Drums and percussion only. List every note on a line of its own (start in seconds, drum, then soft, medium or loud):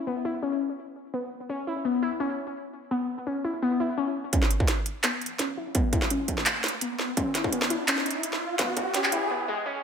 4.33 kick loud
4.33 closed hi-hat medium
4.42 snare soft
4.51 closed hi-hat medium
4.60 kick loud
4.68 snare medium
4.68 closed hi-hat medium
4.86 closed hi-hat medium
5.04 clap loud
5.04 snare medium
5.04 closed hi-hat medium
5.21 closed hi-hat soft
5.26 closed hi-hat medium
5.39 snare medium
5.39 closed hi-hat medium
5.75 kick loud
5.75 closed hi-hat medium
5.93 kick loud
5.93 closed hi-hat medium
6.02 snare medium
6.10 closed hi-hat medium
6.28 kick medium
6.28 closed hi-hat medium
6.38 snare soft
6.46 clap loud
6.46 closed hi-hat medium
6.64 snare medium
6.64 closed hi-hat soft
6.68 closed hi-hat medium
6.81 closed hi-hat medium
6.99 snare medium
7.17 kick loud
7.17 closed hi-hat medium
7.35 snare soft
7.35 closed hi-hat medium
7.44 kick loud
7.53 closed hi-hat medium
7.62 snare medium
7.70 closed hi-hat medium
7.88 clap loud
7.88 closed hi-hat medium
7.98 snare medium
8.06 closed hi-hat soft
8.11 closed hi-hat medium
8.23 closed hi-hat medium
8.33 snare soft
8.59 kick loud
8.59 snare medium
8.59 closed hi-hat medium
8.77 kick loud
8.77 closed hi-hat medium
8.94 snare soft
8.94 closed hi-hat medium
9.04 clap soft
9.12 kick medium
9.12 closed hi-hat medium